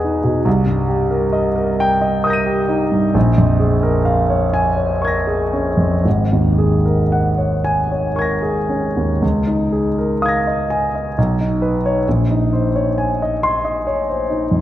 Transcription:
Already playing: E2 B2 G#4 B4 D#5 G#5
0.04 D#4
0.24 B2
0.45 C2
0.67 G2
0.88 G4
1.11 A#4
1.33 D#5
1.56 A#4
1.80 G5
2.01 D#5
2.24 A#4 D#6 G6
2.30 A#6 D#7
2.46 G4
2.69 D#4
2.91 G2
3.14 A#1
3.38 F2
3.60 G#4
3.83 A#4
4.05 F5
4.30 C#5
4.54 G#5
4.77 C#5
5.02 A#4 C#6 G#6
5.07 A#6
5.27 G#4
5.53 C#4
5.77 F2
6.05 G#1
6.33 D#2
6.58 G#4
6.85 A#4
7.12 F#5
7.38 C#5
7.64 G#5
7.92 C#5
8.16 A#4 C#6 G#6
8.21 A#6
8.42 G#4
8.69 C#4
8.97 D#2
9.22 C#2
9.47 D#4
9.72 G#4
9.98 A#4
10.22 F5 D#6 G#6
10.28 A#6
10.47 D#5
10.70 G#5
10.95 D#5
11.18 B1
11.41 D#4
11.62 B4
11.86 C#5
12.08 A#1
12.31 D#4
12.53 C5
12.76 C#5
12.98 G#5
13.22 D#5
13.43 C6
13.65 D#5
13.87 C#5
14.09 C5
14.30 D#4
14.51 F2

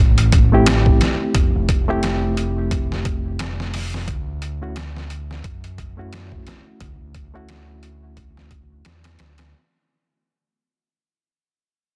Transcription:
0.00 A1
0.18 closed hi-hat
0.32 kick, closed hi-hat
0.52 A3 C4 E4 G4
0.66 snare, closed hi-hat
0.86 kick
1.01 snare, closed hi-hat
1.35 F1, kick, closed hi-hat
1.55 F1
1.69 kick, closed hi-hat
1.88 A3 C4 E4 G4
2.03 snare, closed hi-hat
2.37 closed hi-hat
2.71 kick, closed hi-hat
2.92 snare
3.05 kick, closed hi-hat
3.39 snare, closed hi-hat
3.60 snare
3.74 snare, open hi-hat
3.94 snare
4.08 D2, kick, closed hi-hat
4.42 closed hi-hat
4.62 A3 C#4 E4 F#4
4.76 snare, closed hi-hat
4.97 snare
5.10 closed hi-hat
5.31 snare
5.44 F#2, kick, closed hi-hat
5.64 closed hi-hat
5.78 kick, closed hi-hat
5.97 A3 C#4 E4 F#4
6.13 snare, closed hi-hat
6.32 kick
6.47 snare, closed hi-hat
6.80 D2, kick, closed hi-hat
7.01 D2
7.15 kick, closed hi-hat
7.34 A3 C#4 E4 F#4
7.49 snare, closed hi-hat
7.83 closed hi-hat
8.17 kick, closed hi-hat
8.37 snare
8.51 kick, closed hi-hat
8.85 E2, snare, closed hi-hat
9.04 snare, closed hi-hat
9.19 D2, snare, closed hi-hat
9.38 snare, closed hi-hat

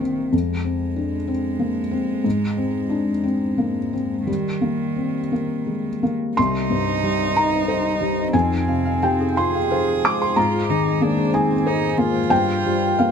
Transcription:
Already playing: C2 D#3 A#3 C4 D4 G4
0.00 C4
0.32 F2 G#3
0.64 C4
0.96 D4
1.27 C4
1.59 A#3
1.91 C4
2.24 G#2
2.57 C4
2.89 D4
3.24 C4
3.58 A#3
3.93 C4
4.27 D#3 G3
4.61 A#3
4.96 C4
5.32 A#3
5.67 G#3
6.03 A#3
6.37 C2 C4 D#4 D#5 C6
6.70 G2 C5
6.88 C5
7.03 G3 C4
7.20 D#4
7.36 D#4 A#5
7.53 C5
7.68 C4 C5
7.85 D#4
8.01 G3
8.33 F2 C4 F4 F5 G#5
8.68 C3 F5
8.85 F5
9.03 F4 G4 G5
9.20 G#4
9.37 F4 G#4 C5 C6
9.54 F5
9.71 F4 C5
9.87 G#4
10.04 G#3 C5 D6
10.20 C5 C6
10.36 G#2 F4 G#4 C5 A#5
10.69 D#3 D#4 G#5
10.86 G#5
11.01 A#3 D4 G#4
11.18 C5
11.33 C4 D#4 G#5 D#6
11.51 G#5
11.67 D#4 G#4 C5
11.83 C5
11.98 A#3 F4
12.15 G5
12.30 G2 A#3 G4 G5
12.65 G3
12.99 A#3 F5

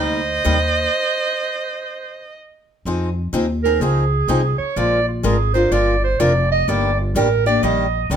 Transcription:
Already playing: D2 C3 G3 A#3 D#4 G4
0.00 C5 D#5
0.44 D#2 C3 G3 A#3 D#4 G4
2.85 F2 F3 C4 D#4 G#4
3.33 D#2 F3 C4 D#4 G#4
3.63 C4 D#4 G#4 A#4
3.80 C#2 F3 C4 D#4 G#4
4.28 C2 F3 C4 D#4 G#4
4.58 C#5, muted upright bass stroke
4.76 A#1 F3 G#3 D4 F4 A#4 D5
5.08 F4
5.23 G#1 F3 G#3 D4 F4 G#4 A#4
5.54 D4 F4 A#4 C5
5.71 G1 F3 G#3 D4 F4 A#4 D5
6.04 C5
6.20 F1 F3 G#3 D4 F4 A#4 D5
6.51 D#5
6.68 G1 D#3 G3 A#3 D4 G4 D5
7.00 F4
7.15 A1 D#3 G3 A#3 D4 G4 A#4
7.46 A#3 D4 G4 D5
7.63 A#1 D#3 G3 A#3 D4 G4 D#5
8.10 C2 D#3 G3 A#3 D4 G4

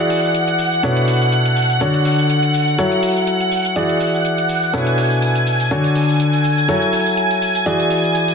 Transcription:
Already playing: E3 E4 F#4 G#4 D5 F#5 F#6
0.10 open hi-hat, shaker
0.24 shaker
0.34 closed hi-hat, shaker
0.48 closed hi-hat
0.59 open hi-hat, shaker
0.73 shaker
0.83 B2 D4 E4 A4 B4 C#5, closed hi-hat, shaker
0.97 closed hi-hat
1.08 open hi-hat, shaker
1.22 shaker
1.32 closed hi-hat, shaker
1.45 closed hi-hat
1.56 open hi-hat, shaker
1.70 closed hi-hat, shaker
1.81 D3 D4 F#4 A4 C#5, closed hi-hat, shaker
1.94 closed hi-hat
2.05 open hi-hat, shaker
2.19 shaker
2.30 closed hi-hat, shaker
2.43 closed hi-hat
2.54 open hi-hat, shaker
2.68 shaker
2.78 F#3 E4 F#4 A4 C#5, closed hi-hat, shaker
2.92 closed hi-hat
3.03 open hi-hat, shaker
3.16 shaker
3.27 closed hi-hat, shaker
3.41 closed hi-hat
3.52 open hi-hat, shaker
3.65 closed hi-hat, shaker
3.76 E3 E4 F#4 G#4 D5, closed hi-hat, shaker
3.89 closed hi-hat
4.00 open hi-hat, shaker
4.14 shaker
4.25 closed hi-hat, shaker
4.38 closed hi-hat
4.49 open hi-hat, shaker
4.63 shaker
4.73 B2 D4 E4 A4 B4 C#5 G#5 G#6, closed hi-hat, tambourine, shaker
4.87 closed hi-hat, tambourine
4.98 open hi-hat, shaker
5.10 tambourine, shaker
5.22 closed hi-hat, tambourine, shaker
5.35 closed hi-hat, tambourine
5.47 open hi-hat, shaker
5.60 closed hi-hat, tambourine, shaker
5.71 D3 D4 F#4 A4 C#5, closed hi-hat, tambourine, shaker
5.84 closed hi-hat, tambourine
5.95 open hi-hat, shaker
6.09 tambourine, shaker
6.20 closed hi-hat, tambourine, shaker
6.33 closed hi-hat, tambourine
6.44 open hi-hat, shaker
6.58 tambourine, shaker
6.69 F#3 E4 F#4 A4 C#5, closed hi-hat, tambourine, shaker
6.82 closed hi-hat, tambourine
6.93 open hi-hat, shaker
7.06 tambourine, shaker
7.17 closed hi-hat, tambourine, shaker
7.31 closed hi-hat, tambourine
7.42 open hi-hat, shaker
7.55 closed hi-hat, tambourine, shaker
7.66 E3 E4 F#4 G#4 D5, closed hi-hat, tambourine, shaker
7.79 closed hi-hat, tambourine
7.91 open hi-hat, shaker
8.04 tambourine, shaker
8.15 closed hi-hat, tambourine, shaker
8.28 closed hi-hat, tambourine

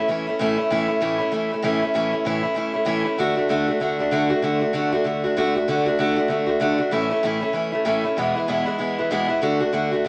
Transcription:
0.08 E3 A3 C#4 E4
0.27 A3 C#4 E4
0.39 A2 E3 A3 C#4 E4
0.57 A3 C#4 E4
0.70 A2 E3 A3 C#4 E4
0.88 A3 C#4 E4
1.01 A2 E3 A3 C#4 E4
1.18 A3 C#4 E4
1.32 E3 A3 C#4 E4
1.52 A3 C#4 E4
1.62 A2 E3 A3 C#4 E4
1.82 A3 C#4 E4
1.94 A2 E3 A3 C#4 E4
2.12 A3 C#4 E4
2.25 A2 E3 A3 C#4 E4
2.43 A3 C#4 E4
2.54 E3 A3 C#4 E4
2.74 A3 C#4 E4
2.85 A2 E3 A3 C#4 E4
3.04 A3 C#4 E4
3.18 D3 A3 D4 F#4
3.36 A3 D4 F#4
3.49 D3 A3 D4 F#4
3.67 A3 D4 F#4
3.80 D3 A3 D4 F#4
3.99 A3 D4 F#4
4.11 D3 A3 D4 F#4
4.30 A3 D4 F#4
4.42 D3 A3 D4 F#4
4.61 A3 D4 F#4
4.73 D3 A3 D4 F#4
4.92 A3 D4 F#4
5.04 D3 A3 D4 F#4
5.24 A3 D4 F#4
5.37 D3 A3 D4 F#4
5.55 A3 D4 F#4
5.68 D3 A3 D4 F#4
5.86 A3 D4 F#4
5.98 D3 A3 D4 F#4
6.16 A3 D4 F#4
6.28 D3 A3 D4 F#4
6.46 A3 D4 F#4
6.60 D3 A3 D4 F#4
6.78 A3 D4 F#4
6.91 A2 E3 A3 C#4 E4
7.10 A3 C#4 E4
7.23 A2 E3 A3 C#4 E4
7.41 A3 C#4 E4
7.53 E3 A3 C#4 E4
7.72 A3 C#4 E4
7.85 A2 E3 A3 C#4 E4
8.04 A3 C#4 E4
8.17 E2 B2 E3 G#3 B3 E4
8.35 E3 G#3 B3 E4
8.48 E2 B2 E3 G#3 B3 E4
8.66 E3 G#3 B3 E4
8.79 E3 G#3 B3 E4
8.98 E3 G#3 B3 E4
9.11 E2 B2 E3 G#3 B3 E4
9.28 E3 G#3 B3 E4
9.42 D3 A3 D4 F#4
9.60 A3 D4 F#4
9.73 D3 A3 D4 F#4
9.92 A3 D4 F#4
10.05 D3

